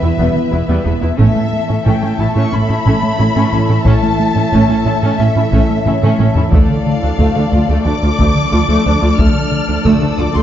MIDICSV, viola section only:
0, 0, Header, 1, 2, 480
1, 0, Start_track
1, 0, Tempo, 666667
1, 857, Time_signature, 4, 2, 24, 8
1, 7507, End_track
2, 0, Start_track
2, 0, Title_t, "Viola section"
2, 0, Program_c, 0, 48
2, 14, Note_on_c, 0, 59, 42
2, 18, Note_on_c, 0, 64, 34
2, 62, Note_off_c, 0, 59, 0
2, 65, Note_off_c, 0, 64, 0
2, 130, Note_on_c, 0, 59, 49
2, 133, Note_on_c, 0, 55, 52
2, 245, Note_off_c, 0, 59, 0
2, 246, Note_off_c, 0, 55, 0
2, 373, Note_on_c, 0, 59, 42
2, 374, Note_on_c, 0, 64, 41
2, 422, Note_off_c, 0, 59, 0
2, 422, Note_off_c, 0, 64, 0
2, 486, Note_on_c, 0, 55, 64
2, 490, Note_on_c, 0, 59, 57
2, 599, Note_off_c, 0, 59, 0
2, 602, Note_off_c, 0, 55, 0
2, 608, Note_on_c, 0, 59, 50
2, 658, Note_off_c, 0, 59, 0
2, 727, Note_on_c, 0, 59, 49
2, 729, Note_on_c, 0, 64, 44
2, 777, Note_off_c, 0, 59, 0
2, 778, Note_off_c, 0, 64, 0
2, 846, Note_on_c, 0, 57, 61
2, 846, Note_on_c, 0, 61, 53
2, 963, Note_off_c, 0, 57, 0
2, 963, Note_off_c, 0, 61, 0
2, 1210, Note_on_c, 0, 61, 35
2, 1211, Note_off_c, 0, 61, 0
2, 1211, Note_on_c, 0, 61, 40
2, 1260, Note_off_c, 0, 61, 0
2, 1334, Note_on_c, 0, 57, 54
2, 1334, Note_on_c, 0, 61, 51
2, 1447, Note_off_c, 0, 57, 0
2, 1447, Note_off_c, 0, 61, 0
2, 1460, Note_on_c, 0, 61, 39
2, 1461, Note_off_c, 0, 61, 0
2, 1461, Note_on_c, 0, 61, 46
2, 1508, Note_off_c, 0, 61, 0
2, 1580, Note_on_c, 0, 64, 42
2, 1582, Note_on_c, 0, 61, 42
2, 1627, Note_off_c, 0, 64, 0
2, 1629, Note_off_c, 0, 61, 0
2, 1696, Note_on_c, 0, 61, 56
2, 1698, Note_on_c, 0, 57, 66
2, 1804, Note_off_c, 0, 61, 0
2, 1809, Note_off_c, 0, 57, 0
2, 1813, Note_on_c, 0, 61, 44
2, 1817, Note_off_c, 0, 61, 0
2, 1817, Note_on_c, 0, 61, 43
2, 1865, Note_off_c, 0, 61, 0
2, 1938, Note_on_c, 0, 64, 43
2, 1941, Note_on_c, 0, 61, 40
2, 1986, Note_off_c, 0, 64, 0
2, 1988, Note_off_c, 0, 61, 0
2, 2059, Note_on_c, 0, 57, 47
2, 2059, Note_on_c, 0, 61, 52
2, 2169, Note_off_c, 0, 61, 0
2, 2170, Note_off_c, 0, 57, 0
2, 2294, Note_on_c, 0, 64, 42
2, 2296, Note_on_c, 0, 61, 47
2, 2343, Note_off_c, 0, 64, 0
2, 2344, Note_off_c, 0, 61, 0
2, 2418, Note_on_c, 0, 57, 57
2, 2418, Note_on_c, 0, 61, 64
2, 2526, Note_off_c, 0, 61, 0
2, 2529, Note_off_c, 0, 57, 0
2, 2534, Note_on_c, 0, 61, 46
2, 2536, Note_off_c, 0, 61, 0
2, 2536, Note_on_c, 0, 61, 47
2, 2584, Note_off_c, 0, 61, 0
2, 2658, Note_on_c, 0, 61, 47
2, 2659, Note_on_c, 0, 64, 42
2, 2706, Note_off_c, 0, 61, 0
2, 2707, Note_off_c, 0, 64, 0
2, 2774, Note_on_c, 0, 57, 54
2, 2775, Note_on_c, 0, 61, 64
2, 2887, Note_off_c, 0, 57, 0
2, 2887, Note_off_c, 0, 61, 0
2, 3136, Note_on_c, 0, 61, 41
2, 3139, Note_off_c, 0, 61, 0
2, 3139, Note_on_c, 0, 61, 36
2, 3187, Note_off_c, 0, 61, 0
2, 3256, Note_on_c, 0, 61, 55
2, 3258, Note_on_c, 0, 57, 57
2, 3368, Note_off_c, 0, 61, 0
2, 3369, Note_off_c, 0, 57, 0
2, 3378, Note_on_c, 0, 61, 41
2, 3381, Note_off_c, 0, 61, 0
2, 3381, Note_on_c, 0, 61, 47
2, 3428, Note_off_c, 0, 61, 0
2, 3497, Note_on_c, 0, 61, 48
2, 3497, Note_on_c, 0, 64, 44
2, 3545, Note_off_c, 0, 61, 0
2, 3545, Note_off_c, 0, 64, 0
2, 3619, Note_on_c, 0, 57, 50
2, 3620, Note_on_c, 0, 61, 64
2, 3729, Note_off_c, 0, 57, 0
2, 3730, Note_off_c, 0, 61, 0
2, 3741, Note_on_c, 0, 61, 41
2, 3742, Note_off_c, 0, 61, 0
2, 3742, Note_on_c, 0, 61, 47
2, 3789, Note_off_c, 0, 61, 0
2, 3860, Note_on_c, 0, 64, 46
2, 3862, Note_on_c, 0, 61, 43
2, 3908, Note_off_c, 0, 64, 0
2, 3909, Note_off_c, 0, 61, 0
2, 3982, Note_on_c, 0, 61, 63
2, 3983, Note_on_c, 0, 57, 58
2, 4091, Note_off_c, 0, 61, 0
2, 4092, Note_off_c, 0, 57, 0
2, 4225, Note_on_c, 0, 64, 49
2, 4226, Note_on_c, 0, 61, 57
2, 4272, Note_off_c, 0, 61, 0
2, 4272, Note_off_c, 0, 64, 0
2, 4344, Note_on_c, 0, 57, 71
2, 4344, Note_on_c, 0, 61, 73
2, 4452, Note_off_c, 0, 57, 0
2, 4452, Note_off_c, 0, 61, 0
2, 4461, Note_on_c, 0, 61, 57
2, 4508, Note_off_c, 0, 61, 0
2, 4586, Note_on_c, 0, 61, 47
2, 4586, Note_on_c, 0, 64, 50
2, 4632, Note_off_c, 0, 61, 0
2, 4632, Note_off_c, 0, 64, 0
2, 4705, Note_on_c, 0, 57, 69
2, 4706, Note_off_c, 0, 57, 0
2, 4706, Note_on_c, 0, 57, 69
2, 4813, Note_off_c, 0, 57, 0
2, 5062, Note_on_c, 0, 62, 47
2, 5063, Note_on_c, 0, 57, 40
2, 5109, Note_off_c, 0, 62, 0
2, 5110, Note_off_c, 0, 57, 0
2, 5180, Note_on_c, 0, 57, 60
2, 5183, Note_off_c, 0, 57, 0
2, 5183, Note_on_c, 0, 57, 60
2, 5291, Note_off_c, 0, 57, 0
2, 5305, Note_on_c, 0, 57, 44
2, 5307, Note_on_c, 0, 62, 47
2, 5351, Note_off_c, 0, 57, 0
2, 5353, Note_off_c, 0, 62, 0
2, 5424, Note_on_c, 0, 57, 50
2, 5425, Note_on_c, 0, 65, 50
2, 5471, Note_off_c, 0, 57, 0
2, 5472, Note_off_c, 0, 65, 0
2, 5538, Note_on_c, 0, 57, 66
2, 5541, Note_off_c, 0, 57, 0
2, 5541, Note_on_c, 0, 57, 71
2, 5651, Note_off_c, 0, 57, 0
2, 5659, Note_on_c, 0, 62, 49
2, 5663, Note_on_c, 0, 57, 50
2, 5706, Note_off_c, 0, 62, 0
2, 5710, Note_off_c, 0, 57, 0
2, 5778, Note_on_c, 0, 57, 47
2, 5778, Note_on_c, 0, 65, 49
2, 5826, Note_off_c, 0, 57, 0
2, 5826, Note_off_c, 0, 65, 0
2, 5902, Note_on_c, 0, 57, 59
2, 5904, Note_off_c, 0, 57, 0
2, 5904, Note_on_c, 0, 57, 63
2, 6012, Note_off_c, 0, 57, 0
2, 6136, Note_on_c, 0, 57, 52
2, 6136, Note_on_c, 0, 65, 54
2, 6184, Note_off_c, 0, 57, 0
2, 6184, Note_off_c, 0, 65, 0
2, 6253, Note_on_c, 0, 57, 73
2, 6255, Note_off_c, 0, 57, 0
2, 6255, Note_on_c, 0, 57, 70
2, 6367, Note_off_c, 0, 57, 0
2, 6378, Note_on_c, 0, 57, 55
2, 6378, Note_on_c, 0, 62, 58
2, 6426, Note_off_c, 0, 57, 0
2, 6426, Note_off_c, 0, 62, 0
2, 6494, Note_on_c, 0, 65, 51
2, 6496, Note_on_c, 0, 57, 59
2, 6542, Note_off_c, 0, 65, 0
2, 6544, Note_off_c, 0, 57, 0
2, 6615, Note_on_c, 0, 57, 60
2, 6727, Note_off_c, 0, 57, 0
2, 6966, Note_on_c, 0, 62, 46
2, 6970, Note_on_c, 0, 57, 44
2, 7016, Note_off_c, 0, 62, 0
2, 7019, Note_off_c, 0, 57, 0
2, 7086, Note_on_c, 0, 57, 63
2, 7087, Note_off_c, 0, 57, 0
2, 7087, Note_on_c, 0, 57, 71
2, 7202, Note_off_c, 0, 57, 0
2, 7208, Note_on_c, 0, 62, 46
2, 7210, Note_on_c, 0, 57, 55
2, 7258, Note_off_c, 0, 62, 0
2, 7259, Note_off_c, 0, 57, 0
2, 7329, Note_on_c, 0, 57, 47
2, 7330, Note_on_c, 0, 65, 44
2, 7379, Note_off_c, 0, 57, 0
2, 7379, Note_off_c, 0, 65, 0
2, 7457, Note_on_c, 0, 57, 63
2, 7507, Note_off_c, 0, 57, 0
2, 7507, End_track
0, 0, End_of_file